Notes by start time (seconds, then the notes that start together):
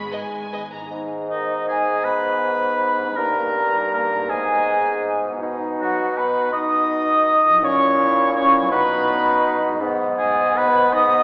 Already playing: G#2 D#3 G#3 B3 D#4 B5
0.11 D#3 B4 D#5 G#5
0.32 D#4
0.52 B3 B4 D#5
0.72 G#2 D#4 A#5
0.77 B3
0.82 D#4
0.86 G#4
0.91 G#2 D#4
1.28 D#3 D#4 D#5
1.68 G#3 G#4 G#5
2.04 B3 B4 B5
2.99 G2
3.03 C#4
3.08 D#4
3.12 A#4
3.17 G2 A#3 D#4 A#4 A#5
3.94 A#3 A#4 A#5
4.12 G#2
4.17 B3
4.21 D#4
4.26 B4
4.30 G#2 G#3 G#4 G#5
5.24 B2
5.29 B3
5.33 D#4
5.37 F#4
5.42 B2 D#4
5.79 F#3 F#4 F#5
6.17 B3 B4 B5
6.52 D#4 D#5 D#6
7.44 A#2
7.49 F#3
7.54 E4
7.58 F#4
7.62 A#2 C#4 E4 C#5 C#6
8.36 C#4 C#5 C#6
8.53 B2
8.58 F#3
8.62 D#4
8.67 B3 F#4
8.71 B2 D#4 B4 B5
9.63 G#2
9.67 G#3
9.72 D#4
9.76 B4
9.81 G#2 B3
10.18 G#3 G#4 G#5
10.55 B3 B4 B5
10.93 D#4 D#5 D#6